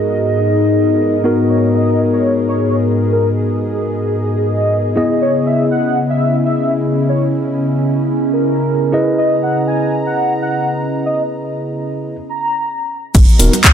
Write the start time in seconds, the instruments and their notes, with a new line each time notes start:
Already playing: analog synth pad G#2 B3 F#4 A#4 D#5, tine electric piano B3 D#4 F#4 A#4, ambient pad G#4 D#5
0.39 soft synth lead D#4
1.24 tine electric piano B3 D#4 F#4 A#4, analog synth pad G#4, soft synth lead A#4
1.49 soft synth lead C#5
1.74 soft synth lead D#5
2.13 soft synth lead C#5
2.49 soft synth lead C#5
3.12 soft synth lead A#4
4.36 soft synth lead D#5
4.96 analog synth pad C#3 E4, tine electric piano B3 E4 G#4 D#5, ambient pad C#4
5.22 soft synth lead C#5
5.46 soft synth lead E5
5.71 soft synth lead F#5
6.10 soft synth lead E5
6.45 soft synth lead E5
7.09 soft synth lead C#5
8.33 soft synth lead A#4
8.92 tine electric piano E4 G#4 B4 D#5, analog synth pad A#5
9.18 soft synth lead D#5
9.43 soft synth lead F#5
9.68 soft synth lead G#5
10.06 soft synth lead F#5
10.42 soft synth lead F#5
11.06 soft synth lead D#5
12.29 soft synth lead A#5
13.14 analog synth bass G#1, analog synth pad B3 F#4 D#5 A#5, kick, closed hi-hat, crash, cabasa
13.24 ambient pad D#5
13.29 cabasa
13.39 analog synth bass D#1, tine electric piano B3 D#4 F#4 A#4, open hi-hat, cabasa
13.53 closed hi-hat, high bongo, high conga, cabasa
13.64 kick, clap, closed hi-hat, cabasa